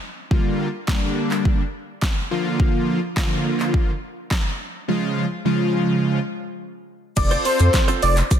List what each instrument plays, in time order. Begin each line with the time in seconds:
0.31 analog polysynth D3 G3 A#3 F4, kick
0.88 analog polysynth D3 G3 A#3 D4, kick, snare, clap
1.31 clap
1.45 kick
2.02 kick, snare, clap
2.31 analog polysynth D3 F3 A#3 F4
2.60 kick
3.17 analog polysynth D3 F3 A#3 F4, kick, snare, clap
3.60 clap
3.74 kick
4.31 kick, snare, clap
4.88 analog polysynth C#3 F3 G#3 F4
5.45 analog polysynth C#3 F3 G#3 F4
7.16 sub bass F1, analog polysynth C4 F4 A4, analog synth lead D5, muted clean electric guitar stroke, kick, closed hi-hat, crash, shaker
7.31 clean electric guitar C4 F4 A4 C5, closed hi-hat, shaker
7.45 clean electric guitar C4 F4 A4 C5, analog synth lead C5, open hi-hat, shaker
7.59 sub bass F2, closed hi-hat, shaker
7.74 muted clean electric guitar stroke, kick, snare, clap, closed hi-hat, shaker
7.88 clean electric guitar C4 F4 A4 C5, closed hi-hat, shaker
8.02 sub bass F1, clean electric guitar C4 F4 A4 C5, analog synth lead D5, open hi-hat, shaker
8.16 muted clean electric guitar stroke, clap, closed hi-hat, shaker
8.31 muted clean electric guitar stroke, kick, closed hi-hat, shaker